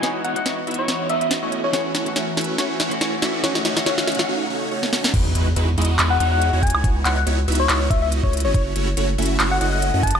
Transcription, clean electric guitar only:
X:1
M:4/4
L:1/16
Q:"Swing 16ths" 1/4=141
K:F#dor
V:1 name="Clean electric guitar"
[E,B,DF]3 [E,B,DF]8- [E,B,DF]3 z2 | [E,A,CF]3 [E,A,CF]4- [E,A,CF] [E,A,CF]3 [E,A,CF]4- [E,A,CF] | [D,A,CF]3 [D,A,CF] [D,A,CF]3 [D,A,CF] z8 | z16 |
z16 | z16 |]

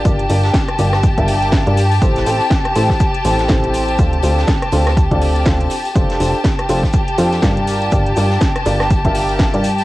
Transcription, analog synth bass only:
X:1
M:4/4
L:1/16
Q:"Swing 16ths" 1/4=122
K:Gdor
V:1 name="Analog synth bass" clef=bass
G,,,2 G,,,2 z2 G,,,3 G,,,4 G,,3 | A,,,2 A,,, z3 A,,, z3 A,,,2 A,,,4 | D,,2 D,,2 z2 D,,3 D,,3 D,,2 z2 | F,,,2 F,,, z3 F,,, z3 F,,2 G,,,4 |
G,,,2 G,,,2 z2 G,,,3 G,,,4 G,,3 |]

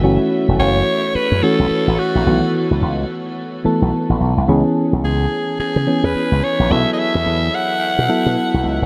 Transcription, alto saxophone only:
X:1
M:4/4
L:1/16
Q:"Swing 16ths" 1/4=108
K:F#dor
V:1 name="Alto saxophone"
z4 c4 B2 A4 F2- | F2 z12 z2 | z4 G4 G3 B3 c2 | e3/2 d/2 e4 f8 z2 |]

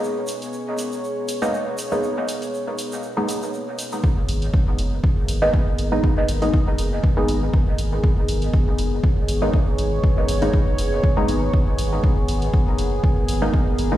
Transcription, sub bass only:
X:1
M:4/4
L:1/8
Q:"Swing 16ths" 1/4=120
K:G#m
V:1 name="Sub bass" clef=bass
z8 | z8 | z G,,, z F,,, z G,,, z G,,, | z G,,, z F,,, z G,,, z G,,, |
z G,,, z F,,, z G,,, z G,,, | z G,,, z F,,, z G,,, z G,,, | z G,,, z F,,, z G,,, z G,,, |]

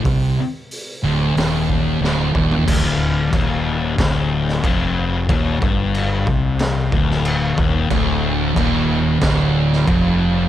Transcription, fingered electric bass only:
X:1
M:4/4
L:1/8
Q:1/4=92
K:C
V:1 name="Fingered electric bass" clef=bass
C,, z2 D,,, _E,,,2 D,,, E,,, | D,,,2 _E,,,2 D,,,2 F,,,2 | _E,,, G,,,2 C,,2 D,,,2 E,,, | D,,,2 _E,,,2 D,,,2 F,,,2 |]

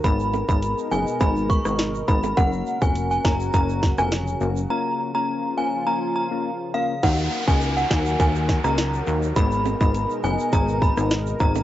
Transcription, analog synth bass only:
X:1
M:4/4
L:1/16
Q:1/4=103
K:Ebm
V:1 name="Analog synth bass" clef=bass
A,,,3 A,,,2 z G,,, z A,,,3 A,,,3 A,,,2 | G,,,2 z F,,,3 G,,,2 G,,,3 F,,,3 G,,,2 | z16 | E,,2 z D,,3 E,,2 E,,3 D,,3 E,,2 |
A,,,3 A,,,2 z G,,, z A,,,3 A,,,3 A,,,2 |]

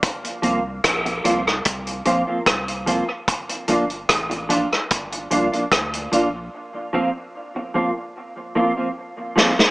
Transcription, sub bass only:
X:1
M:4/4
L:1/16
Q:1/4=74
K:Cdor
V:1 name="Sub bass" clef=bass
z2 C,,2 B,,,2 C,,2 C,,2 B,,, z C,,3 z | z2 G,,,2 A,,,3 z G,,,2 C,, z D,,2 B,,,2 | z16 |]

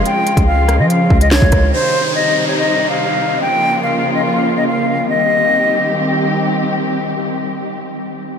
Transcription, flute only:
X:1
M:4/4
L:1/16
Q:1/4=143
K:Cphr
V:1 name="Flute"
g4 f3 e f3 e d4 | c4 e3 d e3 f4- f | g4 f3 e f3 e f4 | e12 z4 |
z16 |]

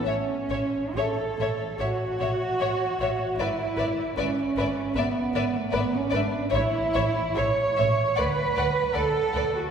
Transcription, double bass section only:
X:1
M:4/4
L:1/8
Q:1/4=75
K:A
V:1 name="Double bass section" clef=bass
A,,, A,,, A,,, A,,, A,,, A,,, A,,, A,,, | G,,, G,,, G,,, G,,, G,,, G,,, G,,, G,,, | A,,, A,,, A,,, A,,, D,, D,, D,, D,, |]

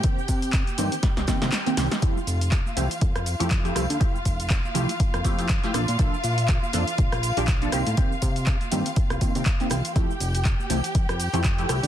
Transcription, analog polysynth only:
X:1
M:4/4
L:1/16
Q:"Swing 16ths" 1/4=121
K:F
V:1 name="Analog polysynth"
[_E,B,CG] z4 z [E,B,CG] z3 [E,B,CG] [E,B,CG] z [E,B,CG] [E,B,CG] z | [F,A,EG] z4 z [F,A,EG] z4 [F,A,EG] z [F,A,EG] [F,A,EG] z | [F,A,EG] z4 z [F,A,EG] z3 [F,A,EG] [F,A,EG] z [F,A,EG] [F,B,DA] z | [F,B,DA] z4 z [F,B,DA] z4 [F,B,DG] z [F,B,DA] [_E,B,CG] z |
[_E,B,CG] z4 z [E,B,CG] z3 [E,B,CF] [E,B,CG] z [E,B,CG] z2 | [F,A,EG] z4 z [F,A,EG] z4 [F,A,EG] z [F,A,EG] [F,A,EG] z |]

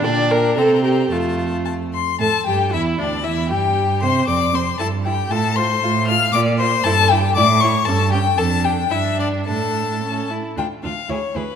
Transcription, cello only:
X:1
M:2/4
L:1/8
Q:1/4=115
K:F
V:1 name="Cello" clef=bass
B,,2 C,2 | F,,3 z | A,, G,, E,, D,, | E,, G,,2 C, |
F,,2 G,,2 | A,,2 A,,2 | [K:Dm] B,,2 G,,2 | A,,2 G,,2 |
F,,2 G,,2 | A,,3 z | D,, D,, D,, D,, |]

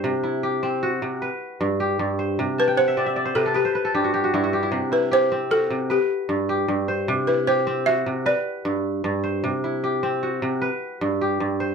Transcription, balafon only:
X:1
M:12/8
L:1/8
Q:3/8=102
K:Clyd
V:1 name="Balafon"
z12 | z B c3 A G4 z2 | z B c2 A2 G4- G z | z B c2 e2 d4- d z |
z12 |]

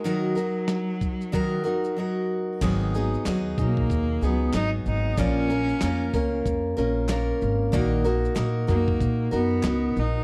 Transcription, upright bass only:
X:1
M:4/4
L:1/8
Q:"Swing 16ths" 1/4=94
K:D#m
V:1 name="Upright bass" clef=bass
z8 | G,,,2 D,, B,,, D,, C,, G,,, G,,, | A,,,2 E,, C,, E,, A,,,2 G,,, | A,,,2 A,, F,, A,, F,, C,, A,,, |]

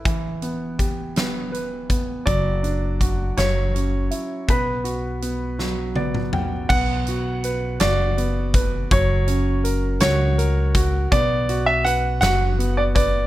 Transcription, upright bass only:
X:1
M:6/8
L:1/8
Q:3/8=54
K:Bm
V:1 name="Upright bass" clef=bass
E,,,6 | F,,,3 F,,,2 z | B,,,6 | B,,,3 F,,,3 |
F,,,3 C,,3 | B,,,3 F,,,3 |]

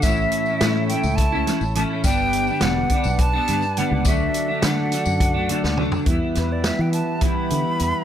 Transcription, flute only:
X:1
M:7/8
L:1/16
Q:1/4=104
K:D
V:1 name="Flute"
e6 g2 a4 a2 | g4 f4 a4 f2 | e4 f8 z2 | [K:Em] z2 B d e g a2 b6 |]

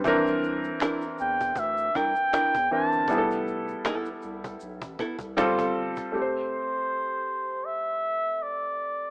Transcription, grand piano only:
X:1
M:4/4
L:1/8
Q:"Swing 16ths" 1/4=79
K:Am
V:1 name="Grand piano"
[E,CD_B]6- [E,CDB] [E,CDB] | [G,B,E^GA]6 [=G,CFA]2 | [A,CGAc]8 |]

